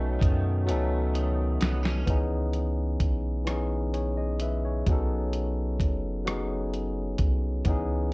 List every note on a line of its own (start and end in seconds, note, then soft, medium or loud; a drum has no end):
0.00 0.18 B1 loud
0.00 2.07 B2 medium
0.00 0.26 F#3 medium
0.00 0.66 A3 medium
0.00 0.27 B3 medium
0.00 0.27 C#4 medium
0.00 1.60 C#4 medium
0.00 0.28 D#4 medium
0.00 0.29 A4 loud
0.19 0.71 F#2 medium
0.19 1.14 D#3 medium
0.19 kick medium
0.19 closed hi-hat medium
0.65 1.65 F#3 medium
0.65 2.16 A3 medium
0.65 1.66 B3 medium
0.65 1.67 C#4 medium
0.65 closed hi-hat medium
0.70 1.58 C#2 medium
0.70 1.68 D#4 medium
0.70 1.68 A4 medium
1.14 2.67 D#3 medium
1.14 closed hi-hat soft
1.60 2.04 C2 loud
1.60 1.83 B3 medium
1.60 snare medium
1.60 closed hi-hat medium
1.83 2.16 C#4 medium
1.83 snare medium
2.05 2.97 C#2 medium
2.05 3.05 E3 medium
2.05 3.06 B3 medium
2.05 3.07 C#4 medium
2.05 kick medium
2.05 closed hi-hat medium
2.10 3.07 D#4 medium
2.10 3.08 G#4 medium
2.54 closed hi-hat soft
3.00 4.83 B1 medium
3.00 kick medium
3.00 closed hi-hat medium
3.45 4.44 E3 medium
3.45 4.45 B3 medium
3.45 4.46 C#4 medium
3.45 cross-stick medium
3.45 closed hi-hat medium
3.49 4.47 D#4 medium
3.49 3.93 G#4 medium
3.93 4.16 G#4 soft
3.93 4.16 C#5 medium
3.93 closed hi-hat soft
4.17 4.40 G#4 soft
4.17 4.39 D#5 medium
4.39 4.63 B4 medium
4.39 4.63 E5 medium
4.39 closed hi-hat medium
4.65 5.09 G#4 soft
4.65 5.08 C#5 medium
4.87 5.82 B1 medium
4.87 5.85 F#3 medium
4.87 5.86 B3 medium
4.87 5.87 C#4 medium
4.87 kick loud
4.87 closed hi-hat medium
4.91 5.87 D#4 medium
4.91 5.88 A4 medium
5.33 closed hi-hat soft
5.80 7.16 F#1 medium
5.80 kick medium
5.80 closed hi-hat medium
6.25 7.24 F#3 medium
6.25 7.25 B3 medium
6.25 7.25 C#4 medium
6.25 cross-stick loud
6.25 closed hi-hat medium
6.29 7.26 D#4 medium
6.29 7.27 G#4 medium
6.74 closed hi-hat soft
7.19 7.62 C2 medium
7.19 kick medium
7.19 closed hi-hat medium
7.65 8.13 C#2 medium
7.65 8.13 E3 medium
7.65 8.13 B3 medium
7.65 8.13 C#4 medium
7.65 kick loud
7.65 closed hi-hat medium
7.69 8.13 D#4 medium
7.69 8.13 G#4 medium